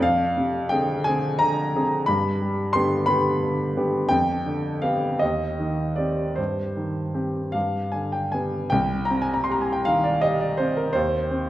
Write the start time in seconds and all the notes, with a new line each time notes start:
0.00 F2 F5
0.37 C3
0.69 D3 C4 G#4 G5
1.04 D3 C4 G#4 G#5
1.39 D3 A#5
1.75 D3 C4 G#4
2.06 G2 B5
2.42 G3
2.73 D3 B3 G4 C6
3.06 D3 B3 G4 B5
3.43 D3
3.77 D3 B3 G4
4.09 F2 G5
4.46 D3
4.82 B3 G4 F5
5.19 D#2 D#5
5.60 D#3
5.96 C4 G4 D5
6.36 G2 C5
6.77 D#3
7.14 C4 G4
7.52 G2 F5
7.92 D3 G#5
8.12 G5
8.32 B3 G4 G#5
8.70 C2 G5
9.05 A#5
9.10 C4
9.22 G#5
9.34 A#5
9.44 C6
9.50 G4 A#5
9.62 G#5
9.73 G5
9.85 D#3 F5
10.04 D5
10.21 G4 D#5
10.41 D5
10.57 C4 C5
10.77 A#4
10.93 D#2 C5
11.31 C4